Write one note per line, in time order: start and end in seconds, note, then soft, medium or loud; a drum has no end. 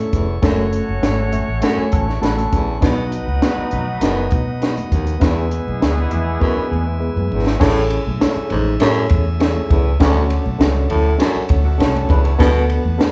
0.00 0.26 A3 medium
0.00 0.26 C#4 medium
0.00 0.27 E4 medium
0.00 0.27 A4 medium
0.00 2.78 A4 medium
0.00 2.78 C#5 soft
0.00 0.39 E5 soft
0.00 2.78 C#6 medium
0.13 0.38 F1 medium
0.13 0.37 E2 medium
0.13 kick medium
0.13 closed hi-hat medium
0.13 muted conga soft
0.13 low conga medium
0.42 0.80 F#1 loud
0.42 0.66 F#2 medium
0.42 0.86 A3 loud
0.42 2.48 A3 medium
0.42 2.48 C#4 medium
0.42 0.86 C#4 medium
0.42 0.86 F#4 medium
0.42 2.48 F#4 medium
0.42 0.87 A4 loud
0.42 2.48 C#5 medium
0.42 5.18 F#5 medium
0.42 kick loud
0.42 snare loud
0.42 closed hi-hat medium
0.73 closed hi-hat medium
0.88 1.00 F#1 medium
0.88 high conga medium
1.02 1.40 G#1 loud
1.02 1.46 A3 medium
1.02 1.47 C#4 medium
1.02 1.47 F#4 medium
1.02 1.10 G#4 medium
1.02 snare loud
1.02 closed hi-hat medium
1.02 high conga medium
1.11 1.50 A4 medium
1.33 1.61 E5 medium
1.33 closed hi-hat medium
1.33 muted conga soft
1.33 high conga medium
1.33 low conga medium
1.49 1.60 A1 medium
1.62 1.86 F#2 medium
1.62 2.06 A3 medium
1.62 2.06 C#4 medium
1.62 2.06 F#4 medium
1.62 2.06 A4 loud
1.62 1.76 F#5 medium
1.62 snare loud
1.62 closed hi-hat loud
1.62 muted conga soft
1.78 1.92 G#5 medium
1.78 muted fingered electric bass stroke soft
1.92 2.18 A1 medium
1.92 2.07 C#4 medium
1.92 2.07 A4 medium
1.92 2.20 A5 medium
1.92 kick loud
1.92 closed hi-hat medium
1.92 high conga medium
2.08 2.22 E4 medium
2.08 2.22 C#5 medium
2.08 snare soft
2.21 2.47 A1 medium
2.21 2.65 A3 medium
2.21 2.66 C#4 medium
2.21 2.66 F#4 medium
2.21 2.66 A4 medium
2.21 2.37 B4 medium
2.21 2.78 A5 medium
2.21 snare medium
2.21 closed hi-hat medium
2.21 muted conga soft
2.37 2.80 C#4 medium
2.37 2.80 A4 medium
2.37 closed hi-hat medium
2.37 high conga medium
2.53 2.77 A#1 medium
2.53 2.77 E2 medium
2.53 kick medium
2.53 closed hi-hat medium
2.53 low conga medium
2.81 3.19 B1 loud
2.81 3.06 B2 medium
2.81 4.88 F#3 medium
2.81 3.25 B3 loud
2.81 4.88 B3 medium
2.81 3.26 D#4 medium
2.81 4.88 D#4 medium
2.81 3.26 F#4 loud
2.81 3.26 B4 loud
2.81 4.88 B4 medium
2.81 7.58 B4 medium
2.81 5.20 D#5 medium
2.81 5.20 D#6 medium
2.81 kick loud
2.81 snare loud
2.81 closed hi-hat medium
3.12 closed hi-hat medium
3.12 muted conga soft
3.27 3.40 C#2 medium
3.27 high conga medium
3.42 3.86 B3 medium
3.42 3.49 C#4 medium
3.42 3.86 F#4 medium
3.42 3.86 B4 medium
3.42 snare loud
3.42 closed hi-hat loud
3.42 muted conga soft
3.42 high conga soft
3.48 3.89 D#4 medium
3.58 muted fingered electric bass stroke soft
3.71 3.97 B1 loud
3.71 closed hi-hat medium
3.71 high conga medium
3.71 low conga medium
4.01 4.27 F#1 loud
4.01 4.26 F#2 medium
4.01 4.45 B3 medium
4.01 4.46 D#4 medium
4.01 4.46 F#4 medium
4.01 4.46 B4 medium
4.01 snare loud
4.01 closed hi-hat loud
4.01 muted conga soft
4.31 4.81 B2 medium
4.31 kick loud
4.31 closed hi-hat medium
4.31 high conga medium
4.61 5.05 B3 medium
4.61 5.05 D#4 medium
4.61 5.06 F#4 medium
4.61 5.06 B4 medium
4.61 snare medium
4.61 closed hi-hat medium
4.61 muted conga soft
4.78 closed hi-hat soft
4.78 high conga medium
4.92 5.16 D#2 medium
4.92 kick medium
4.92 closed hi-hat medium
4.92 low conga medium
5.07 closed hi-hat medium
5.20 5.59 E2 loud
5.20 5.46 E2 medium
5.20 7.27 E3 medium
5.20 7.27 G#3 medium
5.20 5.64 B3 loud
5.20 7.27 B3 medium
5.20 5.65 E4 loud
5.20 5.28 F#4 medium
5.20 7.27 G#4 medium
5.20 5.65 B4 loud
5.20 7.59 E5 soft
5.20 7.59 G#5 medium
5.20 7.59 E6 medium
5.20 kick loud
5.20 snare loud
5.20 closed hi-hat medium
5.27 5.68 G#4 medium
5.51 closed hi-hat medium
5.51 muted conga soft
5.67 5.79 B1 medium
5.67 high conga medium
5.80 6.06 D2 medium
5.80 6.25 B3 medium
5.80 6.25 E4 medium
5.80 6.25 G#4 medium
5.80 6.25 B4 medium
5.80 snare loud
5.80 closed hi-hat medium
5.80 muted conga soft
5.80 high conga soft
6.11 6.36 E2 medium
6.11 6.40 G#4 medium
6.11 6.40 E5 medium
6.11 closed hi-hat medium
6.11 muted conga soft
6.11 high conga medium
6.11 low conga medium
6.40 6.66 F#2 medium
6.40 6.84 B3 medium
6.40 6.85 E4 medium
6.40 6.55 E4 medium
6.40 6.85 G#4 medium
6.40 6.85 B4 medium
6.40 6.55 C#5 medium
6.40 kick medium
6.55 6.70 D4 medium
6.55 6.70 B4 medium
6.55 muted fingered electric bass stroke soft
6.71 7.08 E2 medium
6.71 6.86 B3 medium
6.71 6.85 G#4 medium
6.71 muted conga soft
6.71 high conga medium
6.86 7.58 G#3 medium
6.86 7.57 E4 medium
6.99 7.44 B3 medium
6.99 7.44 E4 medium
6.99 7.44 G#4 medium
6.99 7.44 B4 medium
6.99 muted conga soft
7.16 7.29 F#2 medium
7.16 high conga medium
7.31 7.56 G#1 medium
7.31 7.55 E2 medium
7.31 low conga medium
7.47 snare medium
7.60 7.98 A1 loud
7.60 7.85 A2 medium
7.60 8.04 C#4 loud
7.60 8.04 E4 loud
7.60 8.04 G#4 loud
7.60 8.05 A4 loud
7.60 8.05 C#5 loud
7.60 12.36 E5 medium
7.60 9.98 G#5 medium
7.60 9.99 E6 medium
7.60 kick loud
7.60 snare loud
7.60 crash loud
7.60 muted conga soft
7.60 low conga medium
7.90 ride medium
7.90 muted conga soft
8.07 8.19 B1 loud
8.07 high conga medium
8.20 8.64 C#4 medium
8.20 8.64 E4 medium
8.20 8.64 G#4 medium
8.20 8.65 A4 medium
8.20 8.65 C#5 medium
8.20 snare loud
8.20 ride medium
8.20 high conga medium
8.36 muted fingered electric bass stroke medium
8.50 8.76 A1 loud
8.50 8.75 G#2 medium
8.50 ride soft
8.50 muted conga soft
8.50 high conga medium
8.50 low conga medium
8.80 9.05 F#2 loud
8.80 9.05 A2 loud
8.80 9.24 C#4 medium
8.80 9.24 E4 medium
8.80 9.24 G#4 medium
8.80 9.25 A4 medium
8.80 9.25 C#5 loud
8.80 snare loud
8.80 ride medium
8.80 muted conga soft
9.09 9.60 E2 loud
9.09 kick loud
9.09 ride medium
9.09 high conga medium
9.40 9.84 C#4 medium
9.40 9.84 E4 medium
9.40 9.84 G#4 medium
9.40 9.84 A4 medium
9.40 9.84 C#5 medium
9.40 snare loud
9.40 ride medium
9.56 high conga medium
9.71 9.95 C#2 loud
9.71 9.95 E2 medium
9.71 kick loud
9.71 ride medium
9.71 low conga medium
9.99 10.37 D2 loud
9.99 10.25 D2 medium
9.99 10.44 C#4 loud
9.99 10.44 D4 loud
9.99 10.44 F#4 loud
9.99 10.44 A4 medium
9.99 10.44 C#5 loud
9.99 13.12 F#5 medium
9.99 13.12 A5 medium
9.99 kick loud
9.99 snare loud
9.99 ride medium
9.99 muted conga soft
9.99 low conga medium
10.30 ride medium
10.30 muted conga soft
10.46 10.58 B1 medium
10.46 high conga medium
10.58 10.85 C#2 loud
10.58 11.03 C#4 medium
10.58 11.03 D4 medium
10.58 11.03 F#4 medium
10.58 11.03 A4 medium
10.58 10.66 B4 medium
10.58 snare loud
10.58 ride medium
10.58 high conga medium
10.66 11.07 C#5 medium
10.90 11.15 D2 loud
10.90 11.14 A2 medium
10.90 ride medium
10.90 high conga medium
10.90 low conga medium
11.18 11.44 F#2 medium
11.18 11.63 C#4 medium
11.18 11.63 D4 medium
11.18 11.63 F#4 medium
11.18 11.63 A4 medium
11.18 11.63 C#5 loud
11.18 snare loud
11.18 ride medium
11.36 muted fingered electric bass stroke soft
11.49 11.81 D2 medium
11.49 kick loud
11.49 ride medium
11.49 muted conga soft
11.49 high conga medium
11.65 11.80 A3 medium
11.65 11.79 F#4 medium
11.78 12.04 C2 loud
11.78 12.23 C#4 medium
11.78 12.09 C#4 medium
11.78 12.23 D4 medium
11.78 12.23 F#4 medium
11.78 12.23 A4 medium
11.78 12.09 A4 medium
11.78 12.23 C#5 medium
11.78 snare loud
11.78 ride medium
11.78 muted conga soft
11.95 ride soft
11.95 high conga medium
12.09 12.34 C#2 medium
12.09 12.33 E2 medium
12.09 12.24 D4 medium
12.09 12.24 B4 medium
12.09 kick medium
12.09 ride medium
12.09 muted conga soft
12.09 low conga medium
12.24 12.53 E4 medium
12.24 12.53 C#5 medium
12.24 ride medium
12.39 12.77 D2 loud
12.39 12.64 B2 loud
12.39 12.83 B3 loud
12.39 12.83 D4 loud
12.39 12.83 F#4 loud
12.39 12.83 A4 loud
12.39 12.83 B4 loud
12.39 13.12 B4 medium
12.39 kick loud
12.39 snare loud
12.39 ride medium
12.39 low conga medium
12.70 ride medium
12.70 muted conga soft
12.85 12.97 E2 medium
12.85 high conga medium
12.98 13.12 B3 medium
12.98 13.12 D4 medium
12.98 13.12 F#4 medium
12.98 13.12 A4 medium
12.98 13.12 B4 medium
12.98 snare loud
12.98 ride medium
12.98 muted conga soft
12.98 high conga medium